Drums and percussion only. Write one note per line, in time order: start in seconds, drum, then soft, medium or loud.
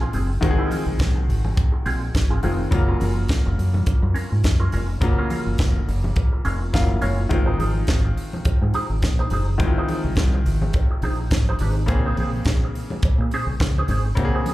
0.13 open hi-hat medium
0.13 muted conga soft
0.13 low conga medium
0.42 kick loud
0.42 closed hi-hat medium
0.42 muted conga soft
0.42 low conga medium
0.71 open hi-hat medium
0.71 muted conga soft
0.71 high conga medium
0.99 kick loud
0.99 snare loud
0.99 closed hi-hat medium
0.99 muted conga soft
0.99 high conga medium
1.30 open hi-hat medium
1.45 high conga medium
1.45 low conga medium
1.57 kick loud
1.57 closed hi-hat medium
1.86 open hi-hat medium
1.86 muted conga soft
2.15 kick medium
2.15 snare medium
2.15 closed hi-hat medium
2.15 muted conga soft
2.15 high conga medium
2.43 open hi-hat medium
2.43 muted conga soft
2.43 low conga medium
2.71 kick loud
2.71 closed hi-hat medium
2.71 low conga medium
3.00 open hi-hat medium
3.00 high conga medium
3.29 kick loud
3.29 snare loud
3.29 closed hi-hat medium
3.29 muted conga soft
3.29 high conga medium
3.59 open hi-hat medium
3.59 muted conga soft
3.74 high conga medium
3.74 low conga medium
3.86 kick loud
3.86 closed hi-hat medium
3.86 muted conga soft
4.15 open hi-hat medium
4.44 kick loud
4.44 snare loud
4.44 closed hi-hat medium
4.44 high conga medium
4.72 open hi-hat medium
4.72 muted conga soft
4.72 low conga medium
5.01 kick loud
5.01 closed hi-hat medium
5.01 low conga medium
5.30 open hi-hat medium
5.30 muted conga soft
5.30 high conga medium
5.58 kick loud
5.58 snare loud
5.58 closed hi-hat medium
5.58 muted conga soft
5.58 high conga medium
5.89 open hi-hat medium
6.04 high conga medium
6.04 low conga medium
6.16 kick loud
6.16 closed hi-hat medium
6.45 open hi-hat soft
6.45 muted conga soft
6.74 kick medium
6.74 snare medium
6.74 closed hi-hat medium
6.74 muted conga soft
6.74 high conga medium
7.02 open hi-hat medium
7.02 muted conga soft
7.02 low conga medium
7.30 kick loud
7.30 closed hi-hat medium
7.30 muted conga soft
7.30 low conga medium
7.60 open hi-hat medium
7.60 high conga medium
7.87 kick loud
7.87 snare loud
7.87 closed hi-hat medium
7.87 high conga medium
8.17 open hi-hat medium
8.33 high conga medium
8.33 low conga medium
8.45 kick loud
8.45 closed hi-hat medium
8.45 muted conga soft
8.74 open hi-hat medium
8.74 muted conga soft
9.02 kick loud
9.02 snare medium
9.02 closed hi-hat medium
9.02 muted conga soft
9.02 high conga medium
9.30 open hi-hat medium
9.30 muted conga soft
9.30 low conga medium
9.60 kick loud
9.60 closed hi-hat medium
9.60 low conga medium
9.88 open hi-hat medium
9.88 muted conga soft
9.88 high conga medium
10.16 kick loud
10.16 snare loud
10.16 closed hi-hat soft
10.16 muted conga soft
10.16 high conga medium
10.46 open hi-hat medium
10.46 muted conga soft
10.62 high conga medium
10.62 low conga medium
10.73 kick loud
10.73 closed hi-hat medium
11.02 open hi-hat soft
11.02 muted conga soft
11.31 kick loud
11.31 snare loud
11.31 closed hi-hat medium
11.31 muted conga soft
11.31 high conga medium
11.59 open hi-hat medium
11.59 muted conga soft
11.59 low conga medium
11.88 kick loud
11.88 closed hi-hat medium
11.88 muted conga soft
11.88 low conga medium
12.17 open hi-hat medium
12.17 high conga medium
12.45 kick loud
12.45 snare loud
12.45 closed hi-hat soft
12.45 muted conga soft
12.45 high conga medium
12.75 open hi-hat medium
12.90 high conga medium
12.90 low conga medium
13.03 kick loud
13.03 closed hi-hat medium
13.31 open hi-hat soft
13.31 muted conga soft
13.60 kick loud
13.60 snare loud
13.60 closed hi-hat medium
13.60 high conga medium
13.88 open hi-hat medium
13.88 muted conga soft
13.88 low conga medium
14.17 kick loud
14.17 closed hi-hat medium
14.17 low conga medium
14.46 open hi-hat medium
14.46 high conga medium